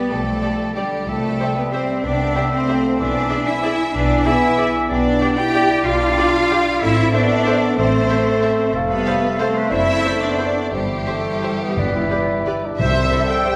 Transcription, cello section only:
0, 0, Header, 1, 2, 480
1, 0, Start_track
1, 0, Tempo, 319659
1, 164, Time_signature, 3, 2, 24, 8
1, 13610, Tempo, 327690
1, 15050, Tempo, 345026
1, 18410, Tempo, 330579
1, 20003, End_track
2, 0, Start_track
2, 0, Title_t, "Cello section"
2, 0, Program_c, 0, 48
2, 166, Note_on_c, 0, 57, 75
2, 1145, Note_off_c, 0, 57, 0
2, 1152, Note_on_c, 0, 55, 64
2, 1613, Note_on_c, 0, 57, 82
2, 1616, Note_off_c, 0, 55, 0
2, 2334, Note_off_c, 0, 57, 0
2, 2347, Note_on_c, 0, 59, 65
2, 2590, Note_on_c, 0, 60, 73
2, 2595, Note_off_c, 0, 59, 0
2, 3061, Note_on_c, 0, 62, 81
2, 3064, Note_off_c, 0, 60, 0
2, 3788, Note_off_c, 0, 62, 0
2, 3795, Note_on_c, 0, 60, 79
2, 4489, Note_off_c, 0, 60, 0
2, 4498, Note_on_c, 0, 62, 86
2, 5206, Note_off_c, 0, 62, 0
2, 5209, Note_on_c, 0, 64, 86
2, 5912, Note_on_c, 0, 62, 88
2, 5930, Note_off_c, 0, 64, 0
2, 6386, Note_off_c, 0, 62, 0
2, 6401, Note_on_c, 0, 64, 91
2, 7130, Note_off_c, 0, 64, 0
2, 7356, Note_on_c, 0, 62, 91
2, 8029, Note_off_c, 0, 62, 0
2, 8078, Note_on_c, 0, 67, 101
2, 8787, Note_on_c, 0, 65, 99
2, 8791, Note_off_c, 0, 67, 0
2, 10233, Note_on_c, 0, 64, 107
2, 10238, Note_off_c, 0, 65, 0
2, 10715, Note_on_c, 0, 62, 107
2, 10717, Note_off_c, 0, 64, 0
2, 11664, Note_off_c, 0, 62, 0
2, 11680, Note_on_c, 0, 60, 90
2, 13099, Note_off_c, 0, 60, 0
2, 13351, Note_on_c, 0, 59, 96
2, 14046, Note_off_c, 0, 59, 0
2, 14094, Note_on_c, 0, 60, 80
2, 14563, Note_on_c, 0, 64, 101
2, 14566, Note_off_c, 0, 60, 0
2, 15274, Note_on_c, 0, 62, 82
2, 15288, Note_off_c, 0, 64, 0
2, 15985, Note_on_c, 0, 55, 81
2, 15994, Note_off_c, 0, 62, 0
2, 18653, Note_off_c, 0, 55, 0
2, 18904, Note_on_c, 0, 48, 73
2, 19287, Note_off_c, 0, 48, 0
2, 20003, End_track
0, 0, End_of_file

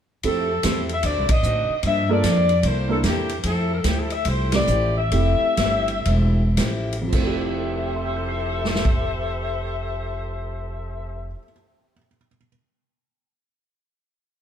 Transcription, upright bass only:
0, 0, Header, 1, 3, 480
1, 0, Start_track
1, 0, Key_signature, -1, "major"
1, 0, Tempo, 402414
1, 285, Time_signature, 4, 2, 24, 8
1, 5087, Tempo, 430108
1, 6047, Tempo, 470588
1, 7007, Tempo, 532387
1, 7967, Tempo, 572519
1, 14077, End_track
2, 0, Start_track
2, 0, Title_t, "Upright bass"
2, 0, Program_c, 0, 32
2, 288, Note_on_c, 0, 41, 68
2, 750, Note_off_c, 0, 41, 0
2, 756, Note_on_c, 0, 40, 79
2, 1222, Note_off_c, 0, 40, 0
2, 1234, Note_on_c, 0, 38, 81
2, 1396, Note_off_c, 0, 38, 0
2, 1396, Note_on_c, 0, 36, 51
2, 1553, Note_off_c, 0, 36, 0
2, 1560, Note_on_c, 0, 33, 59
2, 1697, Note_off_c, 0, 33, 0
2, 1704, Note_on_c, 0, 45, 80
2, 1997, Note_off_c, 0, 45, 0
2, 2183, Note_on_c, 0, 43, 78
2, 2654, Note_off_c, 0, 43, 0
2, 2661, Note_on_c, 0, 41, 79
2, 3129, Note_off_c, 0, 41, 0
2, 3136, Note_on_c, 0, 36, 79
2, 3606, Note_off_c, 0, 36, 0
2, 3613, Note_on_c, 0, 40, 82
2, 4088, Note_off_c, 0, 40, 0
2, 4099, Note_on_c, 0, 41, 72
2, 4573, Note_off_c, 0, 41, 0
2, 4581, Note_on_c, 0, 38, 77
2, 5064, Note_off_c, 0, 38, 0
2, 5074, Note_on_c, 0, 36, 84
2, 5538, Note_off_c, 0, 36, 0
2, 5545, Note_on_c, 0, 33, 85
2, 6025, Note_off_c, 0, 33, 0
2, 6037, Note_on_c, 0, 29, 78
2, 6319, Note_off_c, 0, 29, 0
2, 6507, Note_on_c, 0, 31, 81
2, 6987, Note_off_c, 0, 31, 0
2, 7001, Note_on_c, 0, 28, 84
2, 7453, Note_off_c, 0, 28, 0
2, 7461, Note_on_c, 0, 33, 77
2, 7948, Note_off_c, 0, 33, 0
2, 7960, Note_on_c, 0, 29, 77
2, 11483, Note_off_c, 0, 29, 0
2, 14077, End_track
3, 0, Start_track
3, 0, Title_t, "Muted upright bass strokes"
3, 2017, Note_on_c, 9, 29, 36
3, 2136, Note_off_c, 9, 29, 0
3, 6332, Note_on_c, 9, 29, 34
3, 6434, Note_off_c, 9, 29, 0
3, 14077, End_track
0, 0, End_of_file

